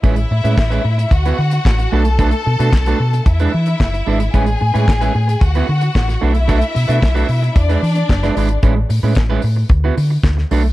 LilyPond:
<<
  \new Staff \with { instrumentName = "String section" } { \time 4/4 \key a \major \tempo 4 = 112 <e' e''>2 <fis' fis''>4. <a' a''>8~ | <a' a''>2 <e' e''>2 | <gis' gis''>2 <fis' fis''>4. <e' e''>8~ | <e' e''>2 <d' d''>2 |
r1 | }
  \new Staff \with { instrumentName = "Clean electric guitar" } { \time 4/4 \key a \major <gis cis' e' b'>16 r8 <gis cis' e' b'>16 r16 <gis cis' e' b'>16 r8. <b e' fis' b'>16 r4 <a d' fis' b'>16 r16 | <a d' fis' b'>16 r8 <a d' fis' b'>16 r16 <a d' fis' b'>16 r8. <gis d' e' b'>16 r4 <gis d' e' b'>16 r16 | <gis cis' e' b'>16 r8 <gis cis' e' b'>16 r16 <gis cis' e' b'>16 r8. <b e' fis' b'>16 r4 <a d' fis' b'>16 r16 | <a d' fis' b'>16 r8 <a d' fis' b'>16 r16 <a d' fis' b'>16 r8. <gis d' e' b'>16 r8. <gis d' e' b'>16 <gis d' e' b'>16 r16 |
<gis cis' e' b'>16 r8 <gis cis' e' b'>16 r16 <gis cis' e' b'>16 r8. <b e' fis' b'>16 r4 <a d' fis' b'>16 r16 | }
  \new Staff \with { instrumentName = "Fingered electric bass" } { \clef bass \time 4/4 \key a \major a,,8 a,16 a,16 a,,8 a,8 d,8 d8 a,,8 b,,8~ | b,,8 b,16 b,16 b,,8 b,8 e,8 e8 fis,,8 gis,,8 | a,,8 a,16 a,16 a,,8 a,8 d,8 d8 a,,8 b,,8~ | b,,8 b,16 b,16 b,,8 b,8 e,8 e8 fis,,8 gis,,8 |
a,,8 a,16 a,16 a,,8 a,8 d,8 d8 d,8 b,,8 | }
  \new DrumStaff \with { instrumentName = "Drums" } \drummode { \time 4/4 <hh bd>16 hh8 hh16 <hc bd sn>16 hh8 hh16 <hh bd>16 hh8 hh16 <hc bd sn>16 hh8 hh16 | <hh bd>16 hh8 hh16 <hc bd sn>16 hh8 hh16 <hh bd>16 hh8 hh16 <hc bd sn>16 hh8 hh16 | <hh bd>16 hh8 hh16 <hc bd sn>16 hh8 hh16 <hh bd>16 hh8 hh16 <hc bd sn>16 <hh sn>8 hh16 | <hh bd>16 hh16 hho16 hh16 <hc bd sn>16 hh16 hho16 hh16 <hh bd>16 hh16 hho16 hh16 <hc bd sn>16 <hh sn>16 hho16 hh16 |
<hh bd>8 hho8 <hc hh bd sn>8 hho8 <hh bd>8 hho8 <hc hh bd sn>16 sn16 hho8 | }
>>